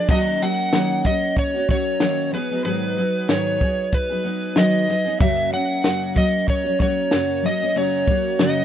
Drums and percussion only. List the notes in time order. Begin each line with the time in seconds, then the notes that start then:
0.09 kick, crash
0.27 shaker
0.41 shaker
0.58 shaker
0.73 snare, shaker
0.90 shaker
1.05 kick, shaker
1.22 shaker
1.36 kick, shaker
1.54 shaker
1.69 kick
1.86 shaker
2.00 snare, shaker
2.19 shaker
2.33 snare
2.50 shaker
2.65 shaker
2.83 shaker
3.14 shaker
3.29 snare, shaker
3.47 shaker
3.61 kick
3.78 shaker
3.93 kick, shaker
4.11 shaker
4.42 shaker
4.56 snare, shaker
4.75 shaker
4.89 snare, shaker
5.06 shaker
5.20 kick, shaker
5.38 shaker
5.69 shaker
5.84 snare, shaker
6.02 shaker
6.16 kick
6.33 shaker
6.48 kick, shaker
6.66 shaker
6.80 kick
6.97 shaker
7.11 snare, shaker
7.29 shaker
7.44 shaker
7.61 shaker
7.75 shaker
7.93 shaker
8.07 kick, shaker
8.25 shaker
8.39 snare, shaker
8.57 shaker